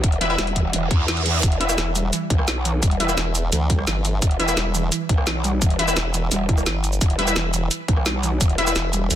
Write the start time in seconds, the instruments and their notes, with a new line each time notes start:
0.04 wobble bass E1, kick, closed hi-hat
0.12 closed hi-hat
0.21 synth pluck E3, synth stab E4 B4 E5, closed hi-hat
0.30 synth stab E4 B4 E5
0.38 wobble bass E1, synth pluck G3, snare, closed hi-hat
0.47 closed hi-hat
0.56 synth pluck E3, kick, closed hi-hat
0.73 wobble bass E1, synth pluck E3, closed hi-hat, reverse cymbal
0.91 wobble bass E2, kick, closed hi-hat
1.08 synth pluck E3, snare, closed hi-hat
1.17 closed hi-hat
1.26 synth pluck E3, closed hi-hat
1.43 wobble bass E1, synth pluck E3, kick, closed hi-hat, shaker
1.52 closed hi-hat
1.60 synth stab E4 B4 E5, closed hi-hat
1.69 synth stab E4 B4 E5, cross-stick, shaker
1.78 wobble bass E1, synth pluck E3, snare, closed hi-hat, shaker
1.95 synth pluck G3, closed hi-hat, shaker
2.13 synth pluck E3, closed hi-hat, shaker
2.30 wobble bass B1, synth pluck E3, kick, closed hi-hat
2.39 cross-stick
2.48 snare, closed hi-hat, shaker
2.65 synth pluck E3, closed hi-hat, shaker
2.83 wobble bass E1, synth pluck G3, kick, closed hi-hat, shaker
2.91 closed hi-hat
3.00 synth pluck E3, synth stab E4 B4 E5, closed hi-hat
3.09 synth stab E4 B4 E5, cross-stick, shaker
3.17 wobble bass E1, synth pluck E3, snare, closed hi-hat, shaker
3.35 closed hi-hat, shaker
3.52 wobble bass D2, synth pluck E3, closed hi-hat, shaker
3.70 synth pluck G3, kick, closed hi-hat
3.79 cross-stick
3.87 wobble bass G1, synth pluck E3, snare, closed hi-hat, shaker
4.05 synth pluck E3, closed hi-hat, shaker
4.22 wobble bass E1, kick, closed hi-hat, shaker
4.31 closed hi-hat
4.40 synth pluck E3, synth stab E4 B4 E5, closed hi-hat
4.48 synth stab E4 B4 E5, cross-stick, shaker
4.57 wobble bass E1, synth pluck G3, snare, closed hi-hat, shaker
4.74 synth pluck E3, closed hi-hat, shaker
4.92 synth pluck E3, closed hi-hat, shaker
5.09 wobble bass B1, kick, closed hi-hat
5.18 cross-stick
5.27 synth pluck E3, snare, closed hi-hat, shaker
5.44 synth pluck G3, closed hi-hat, shaker
5.62 wobble bass E1, synth pluck E3, kick, closed hi-hat, shaker
5.70 closed hi-hat
5.79 synth pluck E3, synth stab E4 B4 E5, closed hi-hat
5.88 synth stab E4 B4 E5, cross-stick, shaker
5.97 wobble bass E1, snare, closed hi-hat, shaker
6.14 synth pluck E3, closed hi-hat, shaker
6.31 wobble bass E1, synth pluck G3, closed hi-hat, shaker
6.49 synth pluck E4, kick, closed hi-hat
6.58 cross-stick, shaker
6.66 wobble bass G1, synth pluck E3, snare, closed hi-hat, shaker
6.84 closed hi-hat, shaker
6.93 shaker
7.01 wobble bass E1, synth pluck E3, kick, closed hi-hat, shaker
7.10 closed hi-hat
7.19 synth pluck G3, synth stab E4 B4 E5, closed hi-hat
7.27 synth stab E4 B4 E5, cross-stick, shaker
7.36 wobble bass E1, synth pluck E3, snare, closed hi-hat, shaker
7.54 synth pluck E3, closed hi-hat, shaker
7.71 closed hi-hat, shaker
7.88 wobble bass B1, synth pluck E3, kick, closed hi-hat
7.97 cross-stick
8.06 synth pluck G3, snare, closed hi-hat, shaker
8.23 synth pluck E3, closed hi-hat, shaker
8.41 wobble bass E1, synth pluck E3, kick, closed hi-hat, shaker
8.49 closed hi-hat
8.58 synth stab E4 B4 E5, closed hi-hat
8.67 synth stab E4 B4 E5, cross-stick, shaker
8.76 wobble bass E1, synth pluck E3, snare, closed hi-hat, shaker
8.93 synth pluck G3, closed hi-hat, shaker
9.10 wobble bass D2, synth pluck E3, closed hi-hat, shaker